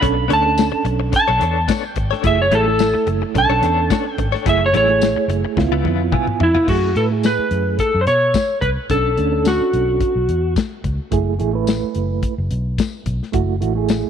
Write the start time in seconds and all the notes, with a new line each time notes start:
Already playing: B5
0.01 B1 B3 C#4 D4 A4 C#5, kick, closed hi-hat
0.15 muted clean electric guitar stroke
0.28 D2 B3 C#4 D4 A4 C#5, closed hi-hat
0.33 A5
0.44 C#4 D4 A4, muted clean electric guitar stroke
0.58 snare, closed hi-hat, tambourine
0.72 muted clean electric guitar stroke, muted fingered electric bass stroke
0.85 B1, muted clean electric guitar stroke, closed hi-hat
1.00 muted clean electric guitar stroke
1.12 A5, muted clean electric guitar stroke, kick, closed hi-hat
1.28 B1 B3 D4 A4 C#5
1.40 E2 B3 D4 A4 C#5, closed hi-hat
1.68 B3 D4 A4 C#5, kick, snare, closed hi-hat, tambourine
1.84 muted clean electric guitar stroke
1.88 G5
1.96 G#1, muted clean electric guitar stroke, kick, closed hi-hat
2.11 D4 A4 C#5, snare
2.23 F#1 F#3 A3 E4 G#4 E5, kick, closed hi-hat
2.39 C#5, muted clean electric guitar stroke
2.51 A1 F#3 A3 E4 G#4 A4, closed hi-hat
2.66 A3 E4 A4, muted clean electric guitar stroke
2.79 snare, closed hi-hat, tambourine
2.94 muted clean electric guitar stroke, muted fingered electric bass stroke
3.07 F#1, muted clean electric guitar stroke, closed hi-hat
3.22 muted clean electric guitar stroke
3.35 B1 C#4 D4 A4 A5, muted clean electric guitar stroke, kick, closed hi-hat
3.49 B1 B3 D4 A4 C#5
3.62 E2 B3 D4 A4 C#5, closed hi-hat
3.90 B3 D4 A4 C#5, kick, snare, closed hi-hat, tambourine
4.05 muted clean electric guitar stroke
4.13 G5
4.18 G#1, muted clean electric guitar stroke, kick, closed hi-hat
4.32 D4 A4 C#5, snare
4.46 F#1 F#3 A3 E4 G#4 E5, kick, closed hi-hat
4.61 muted clean electric guitar stroke
4.66 C#5
4.73 A1 F#3 A3 E4 G#4, closed hi-hat
4.77 C#5
4.88 A3 E4 G#4, muted clean electric guitar stroke
5.01 snare, closed hi-hat, tambourine
5.16 muted fingered electric bass stroke, muted clean electric guitar stroke
5.28 F#1, muted clean electric guitar stroke, closed hi-hat
5.45 muted clean electric guitar stroke
5.57 C#2 B3 E4 F4, muted clean electric guitar stroke, kick, snare
5.71 C#2 C#3 B3 E4 F4
5.85 F2 C#3 B3 E4 F4, high tom
6.12 C#3 B3 E4 F4 G#5, kick, mid tom
6.27 muted clean electric guitar stroke, mid tom
6.40 F2 E4 E5, muted clean electric guitar stroke, floor tom
6.55 B3 E4 F4, floor tom
6.68 F#2 A3 E4 F#4 G#4, kick, crash
6.96 A2 A3 E4 A4 B4, closed hi-hat
7.11 A3 E4 G#4
7.24 B4, snare, closed hi-hat, tambourine
7.39 muted fingered electric bass stroke
7.51 F#2, closed hi-hat
7.79 A4, kick, closed hi-hat
7.94 F#2
8.01 C5
8.07 B2 C#5, closed hi-hat
8.34 kick, snare, closed hi-hat, tambourine
8.61 C2 B4, kick, closed hi-hat
8.89 B1 C#4 D4 A4, kick, closed hi-hat
9.17 D2 C#4 D4 A4, closed hi-hat
9.31 C#4 D4 A4
9.45 F#4, snare, closed hi-hat, tambourine
9.61 muted fingered electric bass stroke
9.73 B1, closed hi-hat
10.01 kick, closed hi-hat
10.16 B1
10.29 E2, closed hi-hat
10.56 kick, snare, closed hi-hat, tambourine
10.84 C#2, kick, closed hi-hat
11.11 F#1 A3 E4 G#4, kick, closed hi-hat
11.39 A1 A3 E4 G#4, closed hi-hat
11.53 A3 E4 B4
11.67 snare, closed hi-hat, tambourine
11.95 F#1, closed hi-hat
12.23 kick, closed hi-hat
12.38 F#1
12.51 B1, closed hi-hat
12.78 kick, snare, closed hi-hat, tambourine
13.06 B1, kick, closed hi-hat
13.23 snare
13.32 F#1 A3 E4 F#4, kick, closed hi-hat
13.60 A1 A3 E4 F#4, closed hi-hat
13.75 A3 E4 G#4
13.89 snare, closed hi-hat, tambourine
14.05 muted fingered electric bass stroke